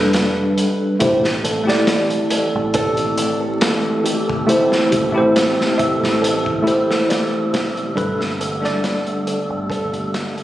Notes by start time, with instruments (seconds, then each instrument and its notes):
Already playing: fingered electric bass F1, tine electric piano G3 D4 A4 B4
0.13 snare, closed hi-hat
0.58 closed hi-hat
0.99 fingered electric bass A1, ambient pad E3 A3 C4 G4, tine electric piano A3 E4 G4 C5, synth texture A3 A4, kick, closed hi-hat
1.24 snare
1.44 felt piano A4, closed hi-hat
1.64 tine electric piano A3 E4 G4
1.68 tine electric piano D5, snare
1.87 snare, closed hi-hat
2.10 closed hi-hat
2.30 felt piano A4, closed hi-hat
2.55 fingered electric bass A1
2.74 felt piano A4, kick, closed hi-hat
2.97 closed hi-hat
3.18 closed hi-hat
3.61 felt piano A4, snare, closed hi-hat
4.04 felt piano G4, closed hi-hat
4.29 kick
4.47 tine electric piano A3 E4 G4 C5, closed hi-hat
4.72 snare
4.91 fingered electric bass A1, felt piano G4, kick, closed hi-hat
5.12 tine electric piano A3 E4 G4
5.18 tine electric piano C5
5.36 snare, closed hi-hat
5.61 snare
5.78 felt piano E5, kick, closed hi-hat
6.03 fingered electric bass A1, snare
6.22 felt piano A4, closed hi-hat
6.46 kick
6.62 tine electric piano A3 E4 G4
6.67 tine electric piano C5, closed hi-hat
6.91 snare
7.09 felt piano D5, snare, closed hi-hat
7.53 fingered electric bass B1, felt piano G4, snare, closed hi-hat
7.77 closed hi-hat
7.95 fingered electric bass G1, ambient pad D3 B3, tine electric piano G3 D4 A4 B4, kick, closed hi-hat
8.21 snare
8.40 felt piano A4, closed hi-hat
8.60 tine electric piano G3 D4 A4
8.64 tine electric piano D5, snare
8.84 snare, closed hi-hat
9.07 closed hi-hat
9.27 felt piano A4, closed hi-hat
9.50 fingered electric bass G1
9.70 felt piano A4, kick, closed hi-hat
9.93 closed hi-hat
10.14 snare, closed hi-hat
10.38 closed hi-hat